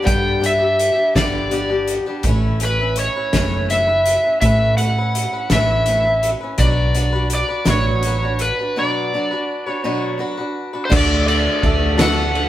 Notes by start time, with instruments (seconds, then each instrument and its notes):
Already playing: electric slide guitar D5
0.02 steel-string acoustic guitar G2 D3 G3 B3 D4 G4, electric slide guitar G5
0.06 fingered electric bass G2, kick, closed hi-hat
0.40 steel-string acoustic guitar G3 B3 D4 G4, closed hi-hat
0.46 electric slide guitar E5
0.59 steel-string acoustic guitar G3 B3 D4 G4
0.79 closed hi-hat
0.95 steel-string acoustic guitar G3 B3 D4 G4
1.15 fingered electric bass G1, steel-string acoustic guitar G2 D3 G3 B3 D4 G4, electric slide guitar D5, kick, snare, closed hi-hat
1.50 steel-string acoustic guitar G3 B3 D4 G4, closed hi-hat
1.70 steel-string acoustic guitar G3 B3 D4 G4
1.88 closed hi-hat
2.06 steel-string acoustic guitar G3 B3 D4 G4
2.23 fingered electric bass A1, steel-string acoustic guitar A3 C#4, kick, closed hi-hat
2.28 steel-string acoustic guitar E4 B4
2.60 steel-string acoustic guitar A3 C#4 E4 B4, closed hi-hat
2.65 electric slide guitar B4
2.79 steel-string acoustic guitar C#4 E4 B4
2.96 electric slide guitar C#5, closed hi-hat
3.16 steel-string acoustic guitar C#4 E4 B4
3.33 fingered electric bass F#1, steel-string acoustic guitar A3 C#4 E4 B4, kick, snare, closed hi-hat
3.69 steel-string acoustic guitar A3 C#4 E4 B4, electric slide guitar E5, closed hi-hat
3.87 steel-string acoustic guitar C#4 E4 B4
4.06 closed hi-hat
4.24 steel-string acoustic guitar C#4 E4 B4
4.41 fingered electric bass A2, steel-string acoustic guitar A3 C#4 E4 B4, electric slide guitar E5, kick, closed hi-hat
4.77 steel-string acoustic guitar A3 C#4 E4, electric slide guitar F#5, closed hi-hat
4.82 steel-string acoustic guitar B4
4.98 steel-string acoustic guitar C#4 E4 B4
5.15 closed hi-hat
5.33 steel-string acoustic guitar C#4 E4 B4
5.50 fingered electric bass A1, steel-string acoustic guitar A3, electric slide guitar E5, kick, snare, closed hi-hat
5.54 steel-string acoustic guitar C#4 E4 B4
5.86 steel-string acoustic guitar A3 C#4, closed hi-hat
5.90 steel-string acoustic guitar E4 B4
6.05 steel-string acoustic guitar E4 B4
6.09 steel-string acoustic guitar C#4
6.23 closed hi-hat
6.41 steel-string acoustic guitar C#4 E4 B4
6.58 fingered electric bass B1, steel-string acoustic guitar B2 F#3 D4 F#4 B4, electric slide guitar D5, kick, closed hi-hat
6.95 steel-string acoustic guitar F#3 D4 F#4 B4, closed hi-hat
7.12 steel-string acoustic guitar D4 F#4 B4
7.30 closed hi-hat
7.35 electric slide guitar D5
7.48 steel-string acoustic guitar D4 F#4 B4
7.65 fingered electric bass A1, steel-string acoustic guitar B2 F#3 D4 F#4 B4, kick, snare, closed hi-hat
7.70 electric slide guitar C#5
8.03 steel-string acoustic guitar F#3 D4 F#4, closed hi-hat
8.07 steel-string acoustic guitar B4
8.22 steel-string acoustic guitar D4 F#4 B4
8.39 electric slide guitar B4, closed hi-hat
8.59 steel-string acoustic guitar D4 F#4 B4
8.76 steel-string acoustic guitar B2 F#3 D4 F#4 B4, electric slide guitar D5
9.14 steel-string acoustic guitar F#3 D4 F#4 B4
9.31 steel-string acoustic guitar D4 F#4 B4
9.66 steel-string acoustic guitar D4 F#4 B4, electric slide guitar C#5
9.84 steel-string acoustic guitar B2 F#3 D4 F#4 B4
10.18 steel-string acoustic guitar F#3 D4 F#4 B4
10.37 steel-string acoustic guitar D4 F#4 B4
10.73 steel-string acoustic guitar D4 F#4 B4
10.85 steel-string acoustic guitar D3, electric slide guitar C5
10.90 fingered electric bass D2, steel-string acoustic guitar A3 D4 F#4 A4, string section D4 F#4 A4, grand piano D4 F#4 A4 D5, kick, crash
10.96 electric slide guitar D5
11.26 grand piano D4 F#4 A4 D5, electric slide guitar D5, ride
11.63 fingered electric bass D2, steel-string acoustic guitar A3 D4 F#4 A4, grand piano D4 F#4 A4 E5, kick, ride
11.97 steel-string acoustic guitar D3 A3 D4 F#4 A4, snare, ride
12.02 electric slide guitar F#5
12.35 grand piano D4 F#4 A4 D5, ride